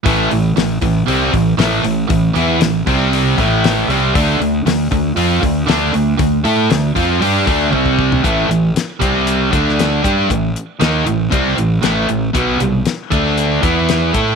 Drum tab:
HH |o-o-o-o-o-o-o-o-|o-o-o-o-o-o-o-o-|o-o-o-o-o-o-o-o-|o-o-o-o-o-o-----|
SD |----o-------o---|----o-------o---|----o-------o---|----o-----------|
FT |----------------|----------------|----------------|---------------o|
BD |o-----o---o-----|o-----o---o-----|o-----o---o-----|o-----o---o-ooo-|

HH |x-x-x-x-x-x-x-x-|x-x-x-x-x-x-x-x-|x-x-x-x-x-x-x-x-|
SD |----o------oo---|----o-------o---|----o-------o---|
FT |----------------|----------------|----------------|
BD |o-----o---o---o-|o-------o-------|o-----o---o---o-|